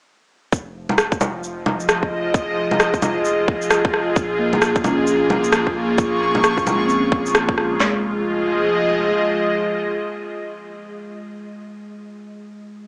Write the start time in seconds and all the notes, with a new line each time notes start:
0.52 F1 F3, kick, shaker
0.89 low bongo
0.98 F4, cross-stick, shaker
1.12 kick, shaker
1.21 low bongo, shaker
1.44 D#5, shaker
1.57 G#4
1.66 low bongo
1.80 shaker
1.89 cross-stick, shaker
2.03 kick
2.34 kick, shaker
2.71 low bongo
2.80 cross-stick, shaker
2.94 kick, shaker
3.02 low bongo, shaker
3.25 shaker
3.48 kick
3.62 shaker
3.71 cross-stick, shaker
3.85 kick
3.94 cross-stick
4.16 A#1 A#3, kick, shaker
4.39 A#3
4.53 low bongo
4.62 cross-stick, shaker
4.76 kick, shaker
4.84 C#4, low bongo, shaker
5.04 F4, shaker
5.30 low bongo
5.44 shaker
5.52 cross-stick, shaker
5.56 C#6
5.67 kick
5.98 kick, shaker
6.35 low bongo
6.44 cross-stick, shaker
6.58 kick, shaker
6.66 G#3, low bongo, shaker
6.85 C4, shaker
6.99 C#4
7.12 kick
7.26 shaker
7.35 cross-stick, shaker
7.49 kick
7.58 cross-stick
7.80 F1 F3 G#3, snare, clap, floor tom
7.88 F4
7.96 G#4
8.02 D#5